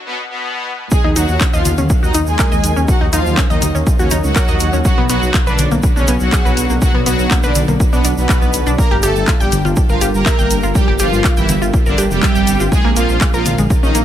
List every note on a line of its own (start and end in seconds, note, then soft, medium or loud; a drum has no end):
0.06 0.21 B2 medium
0.06 0.21 B3 medium
0.30 0.82 B2 medium
0.30 0.82 B3 loud
0.91 4.81 F#3 medium
0.91 1.08 G#3 medium
0.91 2.86 D#4 medium
0.91 1.08 G#4 loud
0.91 4.81 A#4 medium
0.91 1.08 G#5 loud
0.91 kick loud
0.91 shaker medium
1.04 1.13 D#2 medium
1.04 1.11 D#4 loud
1.16 1.25 D#2 loud
1.16 1.40 F#3 medium
1.16 1.23 D#4 loud
1.16 1.40 F#4 loud
1.16 1.40 F#5 medium
1.16 closed hi-hat loud
1.16 shaker loud
1.28 1.37 D#2 medium
1.28 shaker soft
1.40 1.48 C#4 medium
1.40 kick loud
1.40 clap loud
1.40 shaker medium
1.53 1.62 D#2 medium
1.53 1.69 F3 medium
1.53 1.69 F4 medium
1.53 1.60 D#5 loud
1.53 1.69 F5 medium
1.53 shaker soft
1.65 1.74 D#2 loud
1.65 closed hi-hat loud
1.65 low conga medium
1.65 shaker loud
1.78 1.86 D#2 medium
1.78 1.82 C#4 medium
1.78 low conga medium
1.78 shaker soft
1.90 kick loud
1.90 shaker medium
2.03 2.11 D#2 medium
2.03 2.18 D#3 medium
2.03 2.18 D#4 medium
2.03 2.09 F#4 medium
2.03 2.18 D#5 medium
2.03 shaker soft
2.14 2.23 D#2 loud
2.14 2.21 D#4 loud
2.14 closed hi-hat loud
2.14 shaker medium
2.27 2.35 D#2 medium
2.27 2.79 G#3 medium
2.27 2.79 G#4 loud
2.27 2.79 G#5 loud
2.27 shaker soft
2.39 2.49 A#4 loud
2.39 kick loud
2.39 clap loud
2.39 shaker medium
2.52 2.60 D#2 medium
2.52 2.58 D#5 loud
2.52 shaker soft
2.64 2.73 D#2 loud
2.64 closed hi-hat loud
2.64 shaker medium
2.76 2.85 D#2 medium
2.76 2.80 C#4 medium
2.76 shaker soft
2.88 3.04 F#3 medium
2.88 3.04 F#4 loud
2.88 3.04 F#5 loud
2.88 kick loud
2.88 shaker medium
3.01 3.09 D#2 medium
3.01 3.07 D#4 loud
3.13 3.22 D#2 loud
3.13 3.37 F3 medium
3.13 3.20 D#4 loud
3.13 3.37 F4 loud
3.13 3.37 F5 medium
3.13 closed hi-hat loud
3.13 shaker loud
3.26 3.34 D#2 medium
3.26 shaker soft
3.37 3.44 C#4 medium
3.37 kick loud
3.37 clap loud
3.37 shaker medium
3.50 3.58 D#2 medium
3.50 3.66 D#3 medium
3.50 3.66 D#4 medium
3.50 3.57 D#5 loud
3.50 3.66 D#5 medium
3.50 shaker soft
3.62 3.71 D#2 loud
3.62 closed hi-hat loud
3.62 low conga medium
3.62 shaker loud
3.75 3.83 D#2 medium
3.75 3.79 C#4 medium
3.75 shaker soft
3.87 kick loud
3.87 shaker medium
3.99 4.08 D#2 medium
3.99 4.15 C#3 medium
3.99 4.15 C#4 medium
3.99 4.06 F#4 medium
3.99 4.15 C#5 medium
3.99 shaker soft
4.11 4.20 D#2 loud
4.11 4.18 D#4 loud
4.11 closed hi-hat loud
4.11 shaker loud
4.24 4.32 C#2 medium
4.24 4.76 F#3 medium
4.24 4.76 F#4 loud
4.24 4.76 F#5 loud
4.24 shaker soft
4.36 4.46 A#4 loud
4.36 kick loud
4.36 clap loud
4.36 shaker medium
4.48 4.57 D#2 medium
4.48 4.55 D#5 loud
4.48 shaker soft
4.60 4.69 D#2 loud
4.60 closed hi-hat loud
4.60 shaker medium
4.73 4.81 D#2 medium
4.73 4.77 C#4 medium
4.73 shaker soft
4.85 5.01 F#3 medium
4.85 8.74 B3 medium
4.85 10.71 D4 medium
4.85 5.01 F#4 loud
4.85 6.80 C#5 medium
4.85 5.01 F#5 loud
4.85 kick loud
4.85 shaker medium
4.98 5.06 B1 medium
4.98 5.04 B3 loud
5.09 5.18 B1 loud
5.09 5.33 F#3 medium
5.09 5.16 B3 loud
5.09 5.33 F#4 loud
5.09 5.33 F#5 loud
5.09 closed hi-hat loud
5.09 shaker loud
5.22 5.31 B1 medium
5.22 shaker soft
5.34 5.41 A#3 medium
5.34 kick loud
5.34 clap loud
5.34 shaker medium
5.47 5.55 B1 medium
5.47 5.62 D3 medium
5.47 5.62 D4 medium
5.47 5.53 B4 loud
5.47 5.62 D5 medium
5.47 shaker soft
5.58 5.68 B1 loud
5.58 closed hi-hat loud
5.58 low conga medium
5.58 shaker medium
5.71 5.80 B1 medium
5.71 5.75 A#3 medium
5.71 low conga medium
5.71 shaker soft
5.83 kick loud
5.83 shaker medium
5.96 6.04 B1 medium
5.96 6.12 C#3 medium
5.96 6.12 C#4 medium
5.96 6.02 D4 medium
5.96 6.12 C#5 medium
5.96 shaker soft
6.08 6.17 B1 medium
6.08 6.15 B3 loud
6.08 closed hi-hat loud
6.08 shaker medium
6.20 6.29 B1 loud
6.20 6.72 F#3 medium
6.20 6.72 F#4 loud
6.20 6.72 F#5 loud
6.20 shaker soft
6.33 6.43 G#4 loud
6.33 kick loud
6.33 clap loud
6.33 shaker medium
6.45 6.53 B1 medium
6.45 6.52 B4 loud
6.45 shaker soft
6.57 6.66 B1 loud
6.57 closed hi-hat loud
6.57 shaker medium
6.70 6.78 B1 medium
6.70 6.74 A#3 medium
6.70 shaker soft
6.82 6.98 F#3 medium
6.82 6.98 F#4 loud
6.82 8.76 D5 medium
6.82 6.98 F#5 medium
6.82 kick loud
6.82 shaker medium
6.95 7.03 B1 medium
6.95 7.01 B3 loud
7.06 7.15 B1 loud
7.06 7.30 F#3 medium
7.06 7.13 B3 loud
7.06 7.30 F#4 loud
7.06 7.30 F#5 medium
7.06 closed hi-hat loud
7.06 shaker loud
7.19 7.27 B1 medium
7.19 shaker soft
7.31 7.38 A#3 medium
7.31 kick loud
7.31 clap loud
7.31 shaker medium
7.43 7.52 B1 medium
7.43 7.59 D3 medium
7.43 7.59 D4 medium
7.43 7.50 B4 loud
7.43 7.59 D5 medium
7.43 shaker soft
7.55 7.64 B1 loud
7.55 closed hi-hat loud
7.55 low conga medium
7.55 shaker loud
7.68 7.76 B1 medium
7.68 7.72 A#3 medium
7.68 low conga medium
7.68 shaker soft
7.80 kick loud
7.80 shaker medium
7.93 8.01 B1 medium
7.93 8.08 B2 medium
7.93 8.08 B3 medium
7.93 7.99 D4 medium
7.93 8.08 B4 medium
7.93 shaker soft
8.05 8.14 B1 loud
8.05 8.11 D4 medium
8.05 closed hi-hat loud
8.05 shaker medium
8.17 8.26 B1 medium
8.17 8.69 B2 medium
8.17 8.69 B3 loud
8.17 8.69 B4 loud
8.17 shaker soft
8.29 8.39 F#4 medium
8.29 kick loud
8.29 clap loud
8.29 shaker medium
8.42 8.50 B1 medium
8.42 8.48 B3 medium
8.42 shaker soft
8.53 8.63 B1 loud
8.53 closed hi-hat loud
8.53 shaker loud
8.67 8.75 B1 medium
8.67 8.73 D4 loud
8.67 shaker soft
8.78 12.68 G3 medium
8.78 8.95 A#3 medium
8.78 12.68 A#4 medium
8.78 8.95 A#4 loud
8.78 8.95 A#5 medium
8.78 kick loud
8.78 shaker medium
8.91 8.99 G1 medium
8.91 8.98 G4 loud
9.03 9.12 G1 loud
9.03 9.27 A3 medium
9.03 9.10 G4 loud
9.03 9.27 A4 loud
9.03 9.27 A5 medium
9.03 closed hi-hat loud
9.03 shaker loud
9.16 9.24 G1 medium
9.16 shaker soft
9.28 9.34 F4 medium
9.28 kick loud
9.28 clap loud
9.28 shaker soft
9.40 9.49 G1 medium
9.40 9.56 G3 medium
9.40 9.56 G4 loud
9.40 9.56 G5 medium
9.40 9.47 G5 loud
9.40 shaker soft
9.52 9.61 G1 loud
9.52 closed hi-hat loud
9.52 low conga medium
9.52 shaker medium
9.65 9.73 G1 medium
9.65 9.69 F4 medium
9.65 low conga medium
9.65 shaker soft
9.76 kick loud
9.76 shaker medium
9.89 9.98 G1 medium
9.89 10.05 F3 medium
9.89 10.05 F4 medium
9.89 9.96 A#4 medium
9.89 10.05 F5 medium
9.89 shaker soft
10.01 10.10 G1 loud
10.01 10.08 G4 loud
10.01 closed hi-hat loud
10.01 shaker medium
10.14 10.22 G1 medium
10.14 10.66 A#3 medium
10.14 10.66 A#4 loud
10.14 10.66 A#5 loud
10.14 shaker soft
10.26 10.36 E5 loud
10.26 kick loud
10.26 clap loud
10.26 shaker medium
10.39 10.47 G1 medium
10.39 10.45 G5 loud
10.39 shaker soft
10.51 10.59 G1 loud
10.51 closed hi-hat loud
10.51 shaker medium
10.63 10.72 G1 medium
10.63 10.67 F4 medium
10.63 shaker soft
10.75 10.91 G3 medium
10.75 12.70 C4 medium
10.75 10.91 G4 loud
10.75 10.91 G5 loud
10.75 kick loud
10.75 shaker medium
10.88 10.96 G1 medium
10.88 10.94 G4 loud
10.99 11.09 G1 loud
10.99 11.23 F3 medium
10.99 11.23 F4 loud
10.99 11.07 G4 loud
10.99 11.23 F5 medium
10.99 closed hi-hat loud
10.99 shaker medium
11.13 11.21 G1 medium
11.13 shaker soft
11.24 11.31 F4 medium
11.24 kick loud
11.24 clap loud
11.24 shaker soft
11.37 11.45 G1 medium
11.37 11.53 E3 medium
11.37 11.53 E4 loud
11.37 11.53 E5 medium
11.37 11.43 G5 loud
11.37 shaker soft
11.49 11.58 G1 loud
11.49 closed hi-hat loud
11.49 low conga medium
11.49 shaker medium
11.62 11.70 G1 medium
11.62 11.65 F4 medium
11.62 shaker soft
11.74 kick loud
11.74 shaker soft
11.86 11.94 G1 medium
11.86 12.02 D3 medium
11.86 12.02 D4 medium
11.86 11.93 A#4 medium
11.86 12.02 D5 medium
11.86 shaker soft
11.98 12.07 G1 loud
11.98 12.05 G4 loud
11.98 closed hi-hat loud
11.98 shaker medium
12.11 12.19 F1 medium
12.11 12.62 G3 medium
12.11 12.62 G4 loud
12.11 12.62 G5 loud
12.11 shaker soft
12.23 12.33 E5 loud
12.23 kick loud
12.23 clap loud
12.23 shaker medium
12.35 12.44 G1 medium
12.35 12.42 G5 loud
12.35 shaker soft
12.47 12.56 G1 loud
12.47 closed hi-hat loud
12.47 shaker medium
12.60 12.68 G1 medium
12.60 12.64 F4 medium
12.60 shaker soft
12.72 14.05 G#3 medium
12.72 12.88 G#3 medium
12.72 14.05 C#4 medium
12.72 12.88 G#4 loud
12.72 14.05 A#4 medium
12.72 12.88 G#5 loud
12.72 kick loud
12.72 shaker medium
12.85 12.93 A#1 medium
12.85 12.91 A#3 loud
12.96 13.05 A#1 loud
12.96 13.20 F3 medium
12.96 13.03 A#3 loud
12.96 13.20 F4 loud
12.96 13.20 F5 loud
12.96 closed hi-hat loud
12.96 shaker medium
13.09 13.17 A#1 medium
13.09 shaker soft
13.21 13.28 G#3 medium
13.21 kick loud
13.21 clap loud
13.21 shaker soft
13.34 13.42 A#1 medium
13.34 13.49 F3 medium
13.34 13.49 F4 loud
13.34 13.40 A#4 loud
13.34 13.49 F5 medium
13.34 shaker soft
13.46 13.55 A#1 loud
13.46 closed hi-hat loud
13.46 low conga medium
13.46 shaker medium
13.58 13.67 A#1 medium
13.58 13.62 G#3 medium
13.58 low conga medium
13.58 shaker soft
13.70 kick loud
13.70 shaker medium
13.83 13.91 A#1 medium
13.83 13.98 D#3 medium
13.83 13.89 C#4 medium
13.83 13.98 D#4 medium
13.83 13.98 D#5 medium
13.83 shaker soft
13.95 14.04 A#1 medium
13.95 14.02 A#3 loud
13.95 closed hi-hat loud
13.95 shaker medium